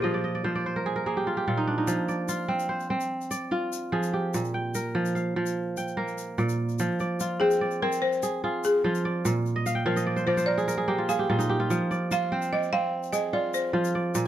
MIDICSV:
0, 0, Header, 1, 4, 480
1, 0, Start_track
1, 0, Tempo, 409277
1, 2200, Time_signature, 12, 3, 24, 8
1, 16742, End_track
2, 0, Start_track
2, 0, Title_t, "Balafon"
2, 0, Program_c, 0, 12
2, 26, Note_on_c, 0, 65, 71
2, 705, Note_off_c, 0, 65, 0
2, 8675, Note_on_c, 0, 68, 85
2, 9176, Note_on_c, 0, 70, 90
2, 9179, Note_off_c, 0, 68, 0
2, 9403, Note_on_c, 0, 72, 94
2, 9422, Note_off_c, 0, 70, 0
2, 10080, Note_off_c, 0, 72, 0
2, 10142, Note_on_c, 0, 68, 70
2, 10583, Note_off_c, 0, 68, 0
2, 11567, Note_on_c, 0, 70, 75
2, 12014, Note_off_c, 0, 70, 0
2, 12041, Note_on_c, 0, 72, 84
2, 12268, Note_on_c, 0, 74, 94
2, 12292, Note_off_c, 0, 72, 0
2, 13005, Note_on_c, 0, 77, 85
2, 13019, Note_off_c, 0, 74, 0
2, 13452, Note_off_c, 0, 77, 0
2, 14218, Note_on_c, 0, 77, 104
2, 14690, Note_on_c, 0, 75, 90
2, 14704, Note_off_c, 0, 77, 0
2, 14925, Note_on_c, 0, 77, 97
2, 14933, Note_off_c, 0, 75, 0
2, 15393, Note_on_c, 0, 75, 86
2, 15417, Note_off_c, 0, 77, 0
2, 15638, Note_on_c, 0, 74, 82
2, 15644, Note_off_c, 0, 75, 0
2, 15862, Note_off_c, 0, 74, 0
2, 15882, Note_on_c, 0, 72, 67
2, 16742, Note_off_c, 0, 72, 0
2, 16742, End_track
3, 0, Start_track
3, 0, Title_t, "Kora"
3, 0, Program_c, 1, 46
3, 0, Note_on_c, 1, 46, 77
3, 0, Note_on_c, 1, 65, 75
3, 0, Note_on_c, 1, 67, 56
3, 0, Note_on_c, 1, 68, 62
3, 0, Note_on_c, 1, 70, 68
3, 0, Note_on_c, 1, 72, 65
3, 0, Note_on_c, 1, 74, 61
3, 0, Note_on_c, 1, 77, 65
3, 42, Note_on_c, 1, 75, 67
3, 44, Note_on_c, 1, 53, 75
3, 135, Note_off_c, 1, 65, 0
3, 158, Note_off_c, 1, 74, 0
3, 162, Note_on_c, 1, 74, 59
3, 277, Note_off_c, 1, 75, 0
3, 281, Note_on_c, 1, 75, 61
3, 403, Note_off_c, 1, 74, 0
3, 408, Note_on_c, 1, 74, 63
3, 433, Note_off_c, 1, 68, 0
3, 508, Note_off_c, 1, 53, 0
3, 514, Note_off_c, 1, 72, 0
3, 519, Note_on_c, 1, 72, 64
3, 521, Note_on_c, 1, 53, 73
3, 645, Note_off_c, 1, 74, 0
3, 650, Note_on_c, 1, 74, 67
3, 718, Note_off_c, 1, 77, 0
3, 720, Note_off_c, 1, 75, 0
3, 733, Note_off_c, 1, 67, 0
3, 771, Note_off_c, 1, 72, 0
3, 775, Note_on_c, 1, 72, 68
3, 888, Note_off_c, 1, 70, 0
3, 893, Note_on_c, 1, 70, 65
3, 1007, Note_on_c, 1, 68, 74
3, 1118, Note_off_c, 1, 70, 0
3, 1123, Note_on_c, 1, 70, 66
3, 1243, Note_off_c, 1, 68, 0
3, 1245, Note_on_c, 1, 58, 68
3, 1248, Note_on_c, 1, 68, 62
3, 1369, Note_on_c, 1, 67, 68
3, 1487, Note_on_c, 1, 65, 66
3, 1602, Note_off_c, 1, 67, 0
3, 1606, Note_on_c, 1, 67, 66
3, 1677, Note_off_c, 1, 68, 0
3, 1717, Note_off_c, 1, 46, 0
3, 1726, Note_off_c, 1, 65, 0
3, 1730, Note_on_c, 1, 46, 67
3, 1731, Note_on_c, 1, 65, 66
3, 1845, Note_on_c, 1, 63, 72
3, 1916, Note_off_c, 1, 74, 0
3, 1962, Note_on_c, 1, 62, 61
3, 2080, Note_off_c, 1, 63, 0
3, 2085, Note_on_c, 1, 63, 65
3, 2168, Note_off_c, 1, 72, 0
3, 2183, Note_off_c, 1, 53, 0
3, 2197, Note_on_c, 1, 53, 78
3, 2259, Note_off_c, 1, 46, 0
3, 2444, Note_on_c, 1, 74, 61
3, 2514, Note_off_c, 1, 63, 0
3, 2616, Note_off_c, 1, 70, 0
3, 2677, Note_off_c, 1, 65, 0
3, 2682, Note_on_c, 1, 65, 70
3, 2913, Note_on_c, 1, 60, 83
3, 3154, Note_on_c, 1, 72, 65
3, 3263, Note_off_c, 1, 67, 0
3, 3397, Note_off_c, 1, 60, 0
3, 3402, Note_on_c, 1, 60, 73
3, 3508, Note_off_c, 1, 58, 0
3, 3744, Note_off_c, 1, 74, 0
3, 3878, Note_on_c, 1, 74, 66
3, 3932, Note_off_c, 1, 62, 0
3, 4117, Note_off_c, 1, 65, 0
3, 4122, Note_on_c, 1, 65, 67
3, 4124, Note_off_c, 1, 65, 0
3, 4124, Note_on_c, 1, 65, 74
3, 4547, Note_off_c, 1, 72, 0
3, 4586, Note_off_c, 1, 53, 0
3, 4599, Note_on_c, 1, 53, 72
3, 4601, Note_on_c, 1, 68, 60
3, 4849, Note_on_c, 1, 67, 58
3, 5093, Note_on_c, 1, 46, 72
3, 5147, Note_off_c, 1, 53, 0
3, 5178, Note_off_c, 1, 74, 0
3, 5326, Note_on_c, 1, 79, 64
3, 5397, Note_off_c, 1, 68, 0
3, 5513, Note_off_c, 1, 60, 0
3, 5568, Note_on_c, 1, 70, 64
3, 5803, Note_on_c, 1, 53, 81
3, 5899, Note_off_c, 1, 65, 0
3, 6042, Note_on_c, 1, 77, 58
3, 6275, Note_off_c, 1, 53, 0
3, 6289, Note_on_c, 1, 53, 73
3, 6419, Note_off_c, 1, 79, 0
3, 6505, Note_off_c, 1, 67, 0
3, 6772, Note_on_c, 1, 79, 64
3, 6998, Note_off_c, 1, 70, 0
3, 7002, Note_on_c, 1, 58, 65
3, 7003, Note_on_c, 1, 70, 61
3, 7213, Note_off_c, 1, 77, 0
3, 7471, Note_off_c, 1, 46, 0
3, 7484, Note_on_c, 1, 46, 77
3, 7486, Note_on_c, 1, 74, 60
3, 7864, Note_off_c, 1, 79, 0
3, 7958, Note_off_c, 1, 53, 0
3, 7972, Note_on_c, 1, 53, 84
3, 8032, Note_off_c, 1, 46, 0
3, 8207, Note_off_c, 1, 74, 0
3, 8212, Note_on_c, 1, 74, 65
3, 8451, Note_on_c, 1, 65, 65
3, 8496, Note_off_c, 1, 70, 0
3, 8684, Note_on_c, 1, 60, 85
3, 8688, Note_on_c, 1, 72, 69
3, 8922, Note_off_c, 1, 74, 0
3, 8927, Note_on_c, 1, 74, 67
3, 9171, Note_off_c, 1, 60, 0
3, 9176, Note_on_c, 1, 60, 81
3, 9264, Note_off_c, 1, 58, 0
3, 9652, Note_on_c, 1, 68, 70
3, 9890, Note_off_c, 1, 65, 0
3, 9893, Note_off_c, 1, 68, 0
3, 9895, Note_on_c, 1, 65, 73
3, 9898, Note_on_c, 1, 68, 65
3, 10081, Note_off_c, 1, 72, 0
3, 10226, Note_off_c, 1, 74, 0
3, 10358, Note_off_c, 1, 53, 0
3, 10371, Note_off_c, 1, 65, 0
3, 10371, Note_on_c, 1, 53, 81
3, 10375, Note_on_c, 1, 65, 64
3, 10614, Note_on_c, 1, 74, 67
3, 10849, Note_on_c, 1, 46, 84
3, 10910, Note_off_c, 1, 53, 0
3, 11209, Note_on_c, 1, 75, 77
3, 11280, Note_off_c, 1, 74, 0
3, 11287, Note_off_c, 1, 60, 0
3, 11329, Note_on_c, 1, 77, 73
3, 11434, Note_on_c, 1, 79, 70
3, 11505, Note_off_c, 1, 68, 0
3, 11554, Note_off_c, 1, 77, 0
3, 11559, Note_on_c, 1, 77, 74
3, 11561, Note_on_c, 1, 53, 88
3, 11680, Note_off_c, 1, 75, 0
3, 11684, Note_on_c, 1, 75, 67
3, 11805, Note_on_c, 1, 74, 65
3, 11920, Note_on_c, 1, 72, 63
3, 12034, Note_off_c, 1, 53, 0
3, 12043, Note_off_c, 1, 74, 0
3, 12047, Note_on_c, 1, 53, 77
3, 12048, Note_on_c, 1, 74, 67
3, 12118, Note_off_c, 1, 75, 0
3, 12150, Note_off_c, 1, 65, 0
3, 12159, Note_off_c, 1, 72, 0
3, 12163, Note_on_c, 1, 72, 73
3, 12287, Note_on_c, 1, 70, 66
3, 12404, Note_on_c, 1, 68, 70
3, 12474, Note_off_c, 1, 79, 0
3, 12517, Note_off_c, 1, 70, 0
3, 12522, Note_on_c, 1, 70, 73
3, 12632, Note_off_c, 1, 68, 0
3, 12637, Note_on_c, 1, 68, 70
3, 12730, Note_off_c, 1, 77, 0
3, 12757, Note_on_c, 1, 58, 79
3, 12758, Note_on_c, 1, 67, 66
3, 12882, Note_on_c, 1, 65, 64
3, 13000, Note_off_c, 1, 68, 0
3, 13004, Note_on_c, 1, 68, 75
3, 13075, Note_off_c, 1, 67, 0
3, 13124, Note_on_c, 1, 67, 65
3, 13234, Note_off_c, 1, 46, 0
3, 13241, Note_off_c, 1, 65, 0
3, 13246, Note_on_c, 1, 65, 70
3, 13247, Note_on_c, 1, 46, 74
3, 13347, Note_off_c, 1, 74, 0
3, 13353, Note_on_c, 1, 63, 75
3, 13475, Note_off_c, 1, 67, 0
3, 13480, Note_on_c, 1, 67, 71
3, 13551, Note_off_c, 1, 68, 0
3, 13556, Note_off_c, 1, 72, 0
3, 13597, Note_off_c, 1, 65, 0
3, 13601, Note_on_c, 1, 65, 77
3, 13710, Note_off_c, 1, 53, 0
3, 13724, Note_on_c, 1, 53, 80
3, 13784, Note_off_c, 1, 46, 0
3, 13965, Note_on_c, 1, 74, 72
3, 14014, Note_off_c, 1, 70, 0
3, 14035, Note_off_c, 1, 63, 0
3, 14201, Note_off_c, 1, 65, 0
3, 14205, Note_on_c, 1, 65, 70
3, 14447, Note_on_c, 1, 60, 80
3, 14451, Note_on_c, 1, 72, 69
3, 14685, Note_off_c, 1, 74, 0
3, 14690, Note_on_c, 1, 74, 58
3, 14921, Note_off_c, 1, 60, 0
3, 14926, Note_on_c, 1, 60, 82
3, 15019, Note_off_c, 1, 58, 0
3, 15137, Note_off_c, 1, 67, 0
3, 15394, Note_on_c, 1, 68, 67
3, 15630, Note_off_c, 1, 65, 0
3, 15634, Note_on_c, 1, 65, 71
3, 15844, Note_off_c, 1, 72, 0
3, 15989, Note_off_c, 1, 74, 0
3, 16092, Note_off_c, 1, 53, 0
3, 16104, Note_off_c, 1, 65, 0
3, 16106, Note_on_c, 1, 53, 78
3, 16109, Note_on_c, 1, 65, 65
3, 16360, Note_on_c, 1, 74, 66
3, 16594, Note_on_c, 1, 46, 80
3, 16656, Note_off_c, 1, 53, 0
3, 16742, Note_off_c, 1, 46, 0
3, 16742, Note_off_c, 1, 60, 0
3, 16742, Note_off_c, 1, 65, 0
3, 16742, Note_off_c, 1, 68, 0
3, 16742, Note_off_c, 1, 74, 0
3, 16742, End_track
4, 0, Start_track
4, 0, Title_t, "Drums"
4, 2199, Note_on_c, 9, 82, 70
4, 2316, Note_off_c, 9, 82, 0
4, 2446, Note_on_c, 9, 82, 21
4, 2563, Note_off_c, 9, 82, 0
4, 2679, Note_on_c, 9, 82, 74
4, 2796, Note_off_c, 9, 82, 0
4, 3042, Note_on_c, 9, 82, 52
4, 3160, Note_off_c, 9, 82, 0
4, 3284, Note_on_c, 9, 82, 18
4, 3401, Note_off_c, 9, 82, 0
4, 3523, Note_on_c, 9, 82, 47
4, 3640, Note_off_c, 9, 82, 0
4, 3767, Note_on_c, 9, 82, 23
4, 3885, Note_off_c, 9, 82, 0
4, 3885, Note_on_c, 9, 82, 58
4, 4002, Note_off_c, 9, 82, 0
4, 4369, Note_on_c, 9, 82, 60
4, 4486, Note_off_c, 9, 82, 0
4, 4725, Note_on_c, 9, 82, 51
4, 4842, Note_off_c, 9, 82, 0
4, 5088, Note_on_c, 9, 82, 63
4, 5205, Note_off_c, 9, 82, 0
4, 5213, Note_on_c, 9, 82, 19
4, 5330, Note_off_c, 9, 82, 0
4, 5565, Note_on_c, 9, 82, 64
4, 5682, Note_off_c, 9, 82, 0
4, 5926, Note_on_c, 9, 82, 43
4, 6044, Note_off_c, 9, 82, 0
4, 6049, Note_on_c, 9, 82, 19
4, 6166, Note_off_c, 9, 82, 0
4, 6405, Note_on_c, 9, 82, 48
4, 6522, Note_off_c, 9, 82, 0
4, 6768, Note_on_c, 9, 82, 61
4, 6885, Note_off_c, 9, 82, 0
4, 6894, Note_on_c, 9, 82, 20
4, 7011, Note_off_c, 9, 82, 0
4, 7128, Note_on_c, 9, 82, 18
4, 7246, Note_off_c, 9, 82, 0
4, 7248, Note_on_c, 9, 82, 58
4, 7366, Note_off_c, 9, 82, 0
4, 7482, Note_on_c, 9, 82, 18
4, 7599, Note_off_c, 9, 82, 0
4, 7610, Note_on_c, 9, 82, 50
4, 7728, Note_off_c, 9, 82, 0
4, 7845, Note_on_c, 9, 82, 20
4, 7960, Note_off_c, 9, 82, 0
4, 7960, Note_on_c, 9, 82, 60
4, 8077, Note_off_c, 9, 82, 0
4, 8201, Note_on_c, 9, 82, 19
4, 8319, Note_off_c, 9, 82, 0
4, 8443, Note_on_c, 9, 82, 67
4, 8561, Note_off_c, 9, 82, 0
4, 8806, Note_on_c, 9, 82, 49
4, 8923, Note_off_c, 9, 82, 0
4, 9041, Note_on_c, 9, 82, 19
4, 9159, Note_off_c, 9, 82, 0
4, 9292, Note_on_c, 9, 82, 45
4, 9409, Note_off_c, 9, 82, 0
4, 9528, Note_on_c, 9, 82, 20
4, 9645, Note_off_c, 9, 82, 0
4, 9648, Note_on_c, 9, 82, 62
4, 9765, Note_off_c, 9, 82, 0
4, 10130, Note_on_c, 9, 82, 58
4, 10247, Note_off_c, 9, 82, 0
4, 10496, Note_on_c, 9, 82, 52
4, 10613, Note_off_c, 9, 82, 0
4, 10852, Note_on_c, 9, 82, 66
4, 10969, Note_off_c, 9, 82, 0
4, 11090, Note_on_c, 9, 82, 20
4, 11207, Note_off_c, 9, 82, 0
4, 11333, Note_on_c, 9, 82, 71
4, 11450, Note_off_c, 9, 82, 0
4, 11692, Note_on_c, 9, 82, 47
4, 11810, Note_off_c, 9, 82, 0
4, 11927, Note_on_c, 9, 82, 19
4, 12044, Note_off_c, 9, 82, 0
4, 12169, Note_on_c, 9, 82, 48
4, 12286, Note_off_c, 9, 82, 0
4, 12412, Note_on_c, 9, 82, 19
4, 12529, Note_off_c, 9, 82, 0
4, 12532, Note_on_c, 9, 82, 55
4, 12649, Note_off_c, 9, 82, 0
4, 13008, Note_on_c, 9, 82, 53
4, 13125, Note_off_c, 9, 82, 0
4, 13370, Note_on_c, 9, 82, 44
4, 13487, Note_off_c, 9, 82, 0
4, 13727, Note_on_c, 9, 82, 54
4, 13844, Note_off_c, 9, 82, 0
4, 13972, Note_on_c, 9, 82, 18
4, 14089, Note_off_c, 9, 82, 0
4, 14206, Note_on_c, 9, 82, 57
4, 14323, Note_off_c, 9, 82, 0
4, 14566, Note_on_c, 9, 82, 44
4, 14684, Note_off_c, 9, 82, 0
4, 14811, Note_on_c, 9, 82, 16
4, 14928, Note_off_c, 9, 82, 0
4, 15283, Note_on_c, 9, 82, 21
4, 15400, Note_off_c, 9, 82, 0
4, 15400, Note_on_c, 9, 82, 58
4, 15517, Note_off_c, 9, 82, 0
4, 15877, Note_on_c, 9, 82, 58
4, 15994, Note_off_c, 9, 82, 0
4, 16237, Note_on_c, 9, 82, 54
4, 16354, Note_off_c, 9, 82, 0
4, 16592, Note_on_c, 9, 82, 69
4, 16709, Note_off_c, 9, 82, 0
4, 16742, End_track
0, 0, End_of_file